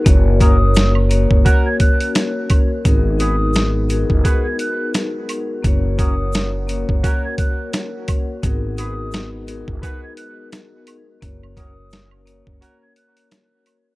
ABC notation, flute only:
X:1
M:4/4
L:1/16
Q:"Swing 16ths" 1/4=86
K:F#mix
V:1 name="Flute"
z2 d'3 z3 f' g' f'2 z4 | z2 d'3 z3 f' g' f'2 z4 | z2 d'3 z3 f' g' f'2 z4 | z2 d'3 z3 f' g' f'2 z4 |
z2 d'3 z3 f' g' f'2 z4 |]